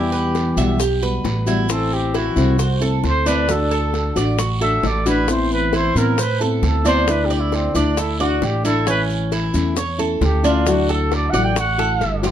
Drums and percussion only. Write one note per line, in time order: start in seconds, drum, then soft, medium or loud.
0.12 high bongo soft
0.12 maracas soft
0.35 high bongo medium
0.35 short guiro medium
0.35 maracas soft
0.57 high bongo soft
0.57 short guiro medium
0.57 maracas medium
0.80 high bongo medium
0.80 long guiro medium
0.80 maracas medium
1.02 maracas soft
1.25 high bongo soft
1.25 low bongo medium
1.25 short guiro medium
1.25 maracas soft
1.47 high bongo soft
1.47 short guiro medium
1.47 maracas medium
1.69 high bongo medium
1.69 long guiro medium
1.69 maracas medium
1.92 high bongo soft
1.92 maracas soft
2.14 high bongo medium
2.14 short guiro medium
2.14 maracas soft
2.36 high bongo soft
2.36 short guiro medium
2.36 maracas medium
2.59 high bongo medium
2.59 long guiro medium
2.59 maracas medium
2.81 maracas soft
3.04 high bongo soft
3.04 low bongo medium
3.04 short guiro medium
3.04 maracas soft
3.26 high bongo soft
3.26 short guiro medium
3.26 maracas medium
3.49 high bongo medium
3.49 long guiro medium
3.49 maracas medium
3.71 high bongo soft
3.71 maracas soft
3.94 high bongo medium
3.94 short guiro medium
3.94 maracas soft
4.16 high bongo soft
4.16 short guiro medium
4.16 maracas medium
4.39 high bongo medium
4.39 long guiro medium
4.39 maracas medium
4.62 maracas soft
4.83 high bongo soft
4.83 low bongo medium
4.83 short guiro medium
4.83 maracas soft
5.06 high bongo soft
5.06 short guiro medium
5.06 maracas medium
5.28 high bongo medium
5.28 long guiro medium
5.28 maracas medium
5.51 high bongo soft
5.51 maracas soft
5.73 high bongo medium
5.73 short guiro medium
5.73 maracas soft
5.95 high bongo soft
5.95 short guiro medium
5.95 maracas medium
6.18 high bongo medium
6.18 long guiro medium
6.18 maracas medium
6.41 maracas soft
6.63 high bongo soft
6.63 low bongo medium
6.63 short guiro medium
6.63 maracas soft
6.85 high bongo soft
6.85 short guiro medium
6.85 maracas medium
7.08 high bongo medium
7.08 long guiro medium
7.08 maracas medium
7.30 high bongo soft
7.30 maracas soft
7.52 high bongo medium
7.52 short guiro medium
7.52 maracas soft
7.75 high bongo soft
7.75 short guiro medium
7.75 maracas medium
7.97 high bongo medium
7.97 long guiro medium
7.97 maracas medium
8.20 maracas soft
8.42 high bongo soft
8.42 low bongo medium
8.42 short guiro medium
8.42 maracas soft
8.64 high bongo soft
8.64 short guiro medium
8.64 maracas medium
8.87 high bongo medium
8.87 long guiro medium
8.87 maracas medium
9.10 high bongo soft
9.10 maracas soft
9.32 high bongo medium
9.32 short guiro medium
9.32 maracas soft
9.54 high bongo soft
9.54 short guiro medium
9.54 maracas medium
9.77 high bongo medium
9.77 long guiro medium
9.77 maracas medium
9.99 maracas soft
10.22 high bongo soft
10.22 low bongo medium
10.22 short guiro medium
10.22 maracas soft
10.44 high bongo soft
10.44 short guiro medium
10.44 maracas medium
10.66 high bongo medium
10.66 long guiro medium
10.66 maracas medium
10.89 high bongo soft
10.89 maracas soft
11.11 high bongo medium
11.11 short guiro medium
11.11 maracas soft
11.34 high bongo soft
11.34 short guiro medium
11.34 maracas medium
11.56 high bongo medium
11.56 long guiro medium
11.56 maracas medium
11.79 high bongo loud
11.79 maracas soft
12.01 high bongo medium
12.01 short guiro medium
12.01 maracas soft
12.23 low bongo medium
12.23 short guiro medium
12.23 maracas medium